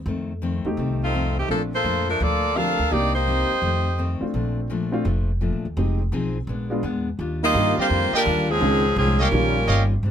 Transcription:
0.06 upright bass F2, steel-string acoustic guitar F2 D#3 A3 C4
0.42 steel-string acoustic guitar F2 D#3 A3 C4
0.65 upright bass E2, grand piano A3 C4 D#4 G4
0.77 upright bass C2, steel-string acoustic guitar F2 D#3 A3 C4
1.04 saxophone section A3 C4 D#4 F4
1.13 steel-string acoustic guitar F2 D#3 A3 C4
1.39 saxophone section D#3 A3 C4 G4
1.48 upright bass A#1, steel-string acoustic guitar A#2 F3 A3 D4, saxophone section F3 A#3 D4 A4, grand piano A3 C4 D4 F4
1.75 saxophone section A#3 F4 A4 C5
1.84 upright bass F2, steel-string acoustic guitar A#2 F3 A3 D4
2.09 saxophone section F3 A3 D4 A#4
2.20 upright bass D2, steel-string acoustic guitar A#2 F3 A3 D4, saxophone section A#3 F4 A4 D5
2.55 steel-string acoustic guitar A#2 F3 A3 D4, grand piano A3 C4 D4 G4, saxophone section D4 A4 A#4 F5
2.79 upright bass D2
2.90 upright bass C2, steel-string acoustic guitar C3 G3 A#3 D#4, grand piano A#3 D4 D#4 G4, saxophone section A#3 D#4 G4 D5
3.15 saxophone section A#3 D#4 G4 C5
3.27 steel-string acoustic guitar C3 G3 A#3 D#4
3.50 muted upright bass stroke
3.62 upright bass F2, steel-string acoustic guitar F2 D#3 A3 C4
3.98 steel-string acoustic guitar F2 D#3 A3 C4
4.21 grand piano A3 C4 D4 F4, muted upright bass stroke
4.34 upright bass A#1, steel-string acoustic guitar A#2 F3 A3 D4
4.70 steel-string acoustic guitar A#2 F3 A3 D4
4.92 grand piano A3 C4 D4 F4
5.05 upright bass F1, steel-string acoustic guitar A#2 F3 A3 D4
5.41 steel-string acoustic guitar A#2 F3 A3 D4
5.53 upright bass A#1
5.65 upright bass D#2
5.76 upright bass F1, steel-string acoustic guitar F3 C4 D#4 G#4, grand piano G#3 C4 D#4 G4
6.12 upright bass B1, steel-string acoustic guitar F3 C4 D#4 G#4
6.47 upright bass A#1, steel-string acoustic guitar A#2 G#3 B3 D4
6.70 grand piano G#3 B3 D4 F4
6.83 upright bass E2, steel-string acoustic guitar A#2 G#3 B3 D4
7.19 upright bass D#2, steel-string acoustic guitar D#3 G3 D4 F4
7.42 trombone section G3 A#3 D#4, saxophone section A#3 F4 G4 D#5
7.54 upright bass G2, grand piano D#3 G3 A#3 D4 F4, steel-string acoustic guitar D#3 G3 D4 F4
7.78 trombone section D3 G3 C4, saxophone section A#3 F4 G4 C5, trumpet section G4 D5 D#5 F5, muted upright bass stroke
7.89 upright bass F2, steel-string acoustic guitar D#3 G3 D4 F4
8.13 trombone section D3 G3 A#3, saxophone section G3 D4 F4 A#4, trumpet section G4 D5 D#5 G5, muted upright bass stroke
8.25 upright bass D#2, steel-string acoustic guitar D#3 G3 D4 F4
8.49 trombone section C#3 F3 G#3, saxophone section F3 C4 C#4 G#4
8.60 upright bass C#2, steel-string acoustic guitar A#2 G#3 C#4 D#4, grand piano D#3 G#3 C4 C#4 F4
8.96 upright bass C2, steel-string acoustic guitar A#2 G#3 C#4 D#4, trombone section C#3 F3 G#3, saxophone section F3 C4 C#4 G#4
9.19 trombone section C#3 G3 A#3, saxophone section G3 C#4 F4 A#4, trumpet section G4 C#5 D#5 F5
9.32 upright bass A#1, grand piano D#3 G3 A#3 C#4 F4, steel-string acoustic guitar D#3 G3 C#4 F4
9.68 upright bass G1, steel-string acoustic guitar D#3 G3 C#4 F4, trumpet section G4 C#5 D#5 F5
10.03 upright bass G#1, steel-string acoustic guitar G#2 G3 C4 D4

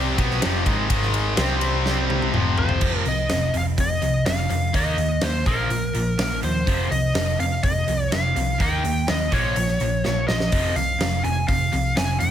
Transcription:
Already playing: picked electric bass C2, distorted electric guitar C3 G3 C4, analog synth pad C4 G4 C5
0.18 picked electric bass B1, distorted electric guitar B2 F#3 B3, analog synth pad F3 C4, kick, ride
0.31 snare
0.41 picked electric bass F1, distorted electric guitar F2 C3 F3, snare, ride
0.66 picked electric bass G#1, distorted electric guitar G#2 D#3 G#3, kick, ride
0.89 picked electric bass G#1, distorted electric guitar G#2 D#3 G#3, analog synth pad G#3 D#4 A#4, kick, ride
1.02 snare
1.14 ride
1.37 picked electric bass C2, distorted electric guitar C3 G3 C4, analog synth pad C4 G4 C5, snare, ride
1.61 ride
1.86 snare
2.10 high tom
2.22 high tom
2.34 picked electric bass F1, distorted electric guitar F2 C3 F3, analog synth pad F4 G5, mid tom
2.58 lead electric guitar C5, floor tom
2.69 floor tom
2.81 picked electric bass F1, distorted electric guitar F2 C3 F3, kick, crash
3.05 picked electric bass C2, distorted electric guitar F2 C3, lead electric guitar D#5, open hi-hat
3.29 picked electric bass F1, distorted electric guitar F2 C3, snare, open hi-hat
3.54 picked electric bass F1, distorted electric guitar F2 C3, lead electric guitar F5, open hi-hat
3.78 picked electric bass F1, distorted electric guitar F2 C3, lead electric guitar D#5, kick, open hi-hat
4.02 picked electric bass C2, distorted electric guitar F2 C3, open hi-hat
4.26 picked electric bass F1, distorted electric guitar F2 C3, lead electric guitar F5, snare, open hi-hat
4.50 distorted electric guitar F2 C3, picked electric bass F2, open hi-hat
4.73 picked electric bass D#2, distorted electric guitar D#3 A#3 D#4, lead electric guitar D#5, kick, open hi-hat
4.97 picked electric bass D#2, distorted electric guitar D#3 A#3, open hi-hat
5.21 picked electric bass D#2, distorted electric guitar D#3 A#3, lead electric guitar C5, snare, open hi-hat
5.46 picked electric bass A#1, distorted electric guitar A#2 F3 A#3, lead electric guitar A#4, kick, open hi-hat
5.69 picked electric bass A#1, distorted electric guitar A#2 F3, open hi-hat
5.94 picked electric bass A#1, distorted electric guitar A#2 F3, open hi-hat
6.19 picked electric bass A#1, distorted electric guitar A#2 F3, snare, open hi-hat
6.43 picked electric bass D#2, distorted electric guitar A#2 F3, lead electric guitar C5, open hi-hat
6.67 picked electric bass F1, distorted electric guitar F2 C3 F3, kick, open hi-hat
6.91 picked electric bass C2, distorted electric guitar F2 C3, lead electric guitar D#5, open hi-hat
7.14 picked electric bass F1, distorted electric guitar F2 C3, snare, open hi-hat
7.39 picked electric bass F1, distorted electric guitar F2 C3, lead electric guitar F5, open hi-hat
7.63 picked electric bass F1, distorted electric guitar F2 C3, lead electric guitar D#5, kick, open hi-hat
7.87 picked electric bass C2, distorted electric guitar F2 C3, open hi-hat
8.11 picked electric bass F1, distorted electric guitar F2 C3, lead electric guitar F5, snare, open hi-hat
8.35 picked electric bass C2, distorted electric guitar F2 C3, open hi-hat
8.60 picked electric bass D#2, distorted electric guitar D#3 A#3 D#4, lead electric guitar G5, kick, open hi-hat
8.84 picked electric bass D#2, distorted electric guitar D#3 A#3, open hi-hat
9.08 picked electric bass D#2, distorted electric guitar D#3 A#3, lead electric guitar D#5, snare, open hi-hat
9.32 picked electric bass A#1, distorted electric guitar A#2 F3 A#3, lead electric guitar C#5, kick, open hi-hat
9.56 picked electric bass A#1, distorted electric guitar A#2 F3, open hi-hat
9.68 snare
9.80 picked electric bass A#1, distorted electric guitar A#2 F3, open hi-hat
10.04 picked electric bass A#1, distorted electric guitar A#2 F3, snare
10.28 picked electric bass A#1, distorted electric guitar A#2 F3, lead electric guitar D#5, snare
10.40 snare
10.52 picked electric bass F1, distorted electric guitar F2 C3 F3, kick, open hi-hat
10.76 picked electric bass C2, distorted electric guitar F2 C3, lead electric guitar F5, open hi-hat
11.00 picked electric bass F1, distorted electric guitar F2 C3, snare, open hi-hat
11.24 picked electric bass F1, distorted electric guitar F2 C3, lead electric guitar G#5, open hi-hat
11.48 picked electric bass F1, distorted electric guitar F2 C3, lead electric guitar F5, kick, open hi-hat
11.72 picked electric bass C2, distorted electric guitar F2 C3, open hi-hat
11.96 picked electric bass F1, distorted electric guitar F2 C3, lead electric guitar G#5, snare, open hi-hat
12.20 distorted electric guitar F2 C3, picked electric bass F2, lead electric guitar G5, open hi-hat

